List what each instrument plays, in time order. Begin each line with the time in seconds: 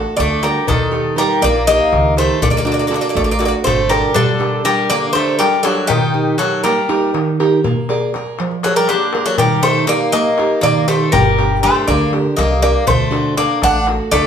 Already playing: steel-string acoustic guitar A3 D4 F#4 A4
0.06 darbuka tek
0.17 upright bass D2, steel-string acoustic guitar D3, bouzouki A3 D5, darbuka tek
0.42 bouzouki G3 A#4, steel-string acoustic guitar D4 F#4 A4, darbuka tek
0.67 upright bass D#2, steel-string acoustic guitar D#3, bouzouki D#3 A4, darbuka dum
0.91 steel-string acoustic guitar D#4 G4 A#4, darbuka tek
1.16 bouzouki G3 A#4, steel-string acoustic guitar D#4 G4 A#4, darbuka tek
1.30 darbuka tek
1.42 upright bass A#1, steel-string acoustic guitar A#3, bouzouki A#3 D5, darbuka tek
1.55 darbuka tek
1.67 bouzouki A#3 D#5, steel-string acoustic guitar D#4 G4 A#4, darbuka tek
1.80 darbuka tek
1.92 upright bass C#2, steel-string acoustic guitar D#3, darbuka tek
2.16 bouzouki A3 C5, steel-string acoustic guitar D#4 G4 A#4, darbuka tek
2.42 upright bass D2, steel-string acoustic guitar D3, bouzouki A3 D5, darbuka dum
2.50 bouzouki A#3 D5
2.55 bouzouki A#3 D5, darbuka tek
2.65 bouzouki A#3 D5, steel-string acoustic guitar D4 F#4 A4, darbuka tek
2.72 bouzouki A#3 D5
2.79 bouzouki A#3 D5
2.87 bouzouki A#3 D5, steel-string acoustic guitar F#4 A4
2.92 bouzouki A#3 D5, steel-string acoustic guitar D4, darbuka tek
3.01 bouzouki A#3 D5
3.09 bouzouki A#3 D5
3.15 upright bass A1, steel-string acoustic guitar A3, bouzouki A3 D5, darbuka tek
3.24 bouzouki A#3 D5
3.29 bouzouki A#3 D5, darbuka tek
3.39 bouzouki A#3 D5, steel-string acoustic guitar D4 F#4 A4, darbuka tek
3.45 bouzouki A#3 D5
3.64 upright bass G#1, steel-string acoustic guitar D3, bouzouki A3 C5, darbuka tek, darbuka dum
3.79 darbuka tek
3.89 bouzouki G3 A#4, steel-string acoustic guitar D4 F#4 A4, darbuka tek
4.03 darbuka tek
4.14 bouzouki D3 A4, steel-string acoustic guitar G3, darbuka dum
4.39 steel-string acoustic guitar D4 G4 A#4, darbuka tek
4.64 bouzouki G3 A#4, steel-string acoustic guitar D4 G4 A#4, darbuka tek
4.78 darbuka tek
4.90 steel-string acoustic guitar D3, bouzouki A#3 D5, darbuka tek
5.03 darbuka tek
5.13 bouzouki A3 C5, steel-string acoustic guitar D4 G4 A#4, darbuka tek
5.28 darbuka tek
5.39 bouzouki G3 A#4, steel-string acoustic guitar G3, darbuka tek
5.63 bouzouki F#3 A4, steel-string acoustic guitar D4 G4 A#4, darbuka tek
5.87 bouzouki D#3 G4, steel-string acoustic guitar D#3, darbuka dum
6.14 steel-string acoustic guitar D#4 G4 A#4
6.38 bouzouki F#3 A4, steel-string acoustic guitar D#4 G4 A#4, darbuka tek
6.53 darbuka tek
6.63 bouzouki G3 A#4, steel-string acoustic guitar A#3, darbuka tek
6.78 darbuka tek
6.89 steel-string acoustic guitar D#4 G4 A#4, darbuka tek
7.02 darbuka tek
7.14 steel-string acoustic guitar D#3, darbuka tek
7.40 steel-string acoustic guitar D#4 G4 A#4, darbuka tek
7.64 steel-string acoustic guitar A#3, darbuka dum
7.89 steel-string acoustic guitar G#4 A#4 D5, darbuka tek
8.14 steel-string acoustic guitar G#4 A#4 D5, darbuka tek
8.26 darbuka tek
8.39 steel-string acoustic guitar F3, darbuka tek
8.51 darbuka tek
8.63 bouzouki F#3 A4, steel-string acoustic guitar G#4 A#4 D5, darbuka tek
8.76 bouzouki G3 A#4, darbuka tek
8.88 bouzouki D3 G4, steel-string acoustic guitar A#3, darbuka tek
9.13 steel-string acoustic guitar G#4 A#4 D5, darbuka tek
9.26 bouzouki F#3 A4
9.38 steel-string acoustic guitar D#3, bouzouki G3 A#4, darbuka dum
9.63 bouzouki A3 C5, steel-string acoustic guitar D#4 G4 A#4, darbuka tek
9.76 darbuka tek
9.87 bouzouki A#3 D5, steel-string acoustic guitar D#4 G4 A#4, darbuka tek
10.00 darbuka tek
10.12 bouzouki A#3 D#5, steel-string acoustic guitar A#3, darbuka tek
10.25 darbuka tek
10.38 steel-string acoustic guitar D#4 G4 A#4, darbuka tek
10.50 darbuka tek
10.61 steel-string acoustic guitar D#3, bouzouki A#3 D5, darbuka tek, darbuka dum
10.88 bouzouki A3 C5, steel-string acoustic guitar D#4 G4 A#4, darbuka tek
11.01 darbuka tek
11.12 upright bass G1, bouzouki G3 A#4, steel-string acoustic guitar G3, darbuka dum
11.38 steel-string acoustic guitar D4 G4 A#4, darbuka tek
11.63 bouzouki A3 C5, steel-string acoustic guitar D4 G4 A#4, darbuka tek
11.75 darbuka tek
11.87 upright bass D2, steel-string acoustic guitar D3, bouzouki A#3 D5, darbuka tek
12.13 steel-string acoustic guitar D4 G4 A#4, darbuka tek
12.25 darbuka tek
12.37 upright bass C2, steel-string acoustic guitar G3, bouzouki A#3 D#5, darbuka tek
12.62 bouzouki A#3 D5, steel-string acoustic guitar D4 G4 A#4, darbuka tek
12.87 upright bass D2, steel-string acoustic guitar D3, bouzouki A3 C5, darbuka dum
13.11 steel-string acoustic guitar D4 F#4 A4, darbuka tek
13.37 bouzouki A#3 D5, steel-string acoustic guitar D4 F#4 A4, darbuka tek
13.50 darbuka tek
13.62 upright bass A1, steel-string acoustic guitar A3, bouzouki D4 F#5, darbuka tek
13.74 darbuka tek
13.87 steel-string acoustic guitar D4 F#4 A4, darbuka tek
14.00 darbuka tek
14.11 upright bass D2, steel-string acoustic guitar D3, bouzouki A3 D5, darbuka tek